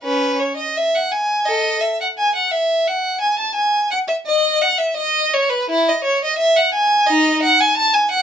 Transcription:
0.04 C#4 B4
0.40 C#5
0.57 D#5
0.77 E5
0.95 F#5
1.12 G#5
1.46 A4 D#5
1.81 E5
2.01 F#5
2.18 G#5
2.35 F#5
2.51 E5
2.88 F#5
3.21 G#5
3.39 A5
3.55 G#5
3.91 F#5
4.08 E5
4.27 D#5
4.62 F#5
4.78 E5
4.97 D#5
5.34 C#5
5.50 B4
5.70 E4
5.89 D#5
6.04 C#5
6.25 D#5
6.38 E5
6.57 F#5
6.74 G#5
7.07 D#4 D#5
7.43 F#5
7.60 G#5
7.77 A5
7.94 G#5
8.11 F#5

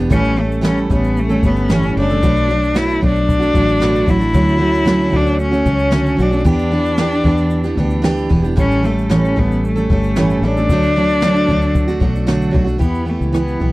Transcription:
Already playing: G4
0.00 B3 D4
0.10 A1 A2 E3 G3 A3 C#4 A4, kick, shaker
0.24 shaker
0.36 G3 A3 C#4 A4
0.52 shaker
0.61 A2 E3 G3 A3 C#4 A4, snare, shaker
0.67 C#4
0.77 shaker
0.90 A1 G3 A3 B3 C#4 A4, kick, shaker
1.04 shaker
1.17 A3, shaker
1.29 G3 A3 C#4 A4, shaker
1.43 G1 G3 A3 B3 C#4 A4, kick, shaker
1.56 shaker
1.69 A2 E3 G3 A3 C#4 A4, snare, shaker
1.83 shaker
1.97 F#1 G3 A3 C#4 D4 A4, snare
2.10 G3 A3 C#4 A4, shaker
2.23 B1 B2 F#3 A3 D4 F#4, kick, shaker
2.37 shaker
2.49 F#3 A3 D4 F#4, shaker
2.64 shaker
2.74 B2 F#3 A3 D4 E4 F#4, snare, shaker
2.90 shaker
3.01 B1 F#3 A3 D4 F#4, kick
3.07 D4
3.16 shaker
3.29 kick, shaker
3.40 A3 D4 F#4, shaker
3.53 A1 F#3 A3 D4 F#4, kick, shaker
3.68 shaker
3.80 B2 F#3 A3 D4 F#4, snare, shaker
3.95 shaker
4.06 A1 F#3 A3 D4 F#4, kick, shaker
4.10 E4
4.19 A3 D4 F#4, shaker
4.33 D2 D3 F#3 A3 C#4 F#4, kick, shaker
4.48 shaker
4.59 F#3 A3 C#4 F#4
4.75 shaker
4.85 D3 F#3 A3 C#4 F#4, snare, shaker
5.01 shaker
5.10 D2 F#3 A3 C#4 F#4, kick
5.16 D4
5.27 shaker
5.39 C#4, shaker
5.51 A3 C#4 F#4, shaker
5.66 C#2 F#3 A3 C#4 F#4, kick, shaker
5.79 shaker
5.91 D3 F#3 A3 C#4 F#4, snare, shaker
6.06 shaker
6.17 B1 F#3 A3 C#4 F#4, shaker
6.22 D4
6.30 A3 C#4 F#4, shaker
6.44 E2 E3 B3 D4 G4, kick, shaker
6.49 D4
6.59 shaker
6.71 E3 B3 D4 G4
6.85 shaker
6.97 E3 B3 D4 G4, snare, shaker
7.12 shaker
7.24 E2 E3 B3 D4 G4, kick
7.37 shaker
7.50 shaker
7.64 B3 D4 G4, shaker
7.77 D2 E3 B3 D4 G4, kick
7.90 shaker
8.02 E3 B3 D4 G4, snare, shaker
8.17 shaker
8.29 E1 E3 B3 D4 G4, kick
8.42 B3 D4 G4, shaker
8.56 A1 A2 E3 G3 A3 C#4 A4, kick, shaker
8.71 shaker
8.83 G3 A3 C#4 A4, shaker
8.98 shaker
9.09 A2 E3 G3 A3 C#4 A4, snare, shaker
9.25 shaker
9.36 A1 G3 A3 B3 C#4 A4, kick
9.52 shaker
9.64 A3, shaker
9.76 G3 A3 C#4 A4, shaker
9.90 G1 G3 A3 C#4 A4, kick
10.03 shaker
10.16 A2 E3 G3 A3 C#4 A4, snare, shaker
10.30 shaker
10.42 A1 G3 A3 C#4 A4, snare
10.46 D4
10.57 G3 A3 C#4 A4, shaker
10.69 D2 D3 F#3 A3 D4 F#4, kick, shaker
10.83 shaker
10.96 F#3 A3 D4 F#4, shaker
11.09 shaker
11.21 D3 F#3 A3 D4 F#4, snare, shaker
11.36 shaker
11.48 D2 F#3 A3 D4 F#4, kick
11.62 shaker
11.75 kick, shaker
11.88 A3 D4 F#4, shaker
12.00 B1 F#3 A3 D4 F#4, kick
12.15 shaker
12.27 D3 F#3 A3 D4 F#4, snare, shaker
12.41 shaker
12.51 B1 F#3 A3 D4 F#4, kick
12.64 A3 D4 F#4, shaker
12.78 E2 E3 B3 E4 G4, kick, shaker
12.95 shaker
13.05 E3 B3 E4 G4
13.09 A3
13.21 C#2, shaker
13.32 E3 B3 E4 G4, cross-stick, shaker
13.48 shaker
13.60 B1 E3 B3 E4 G4, kick

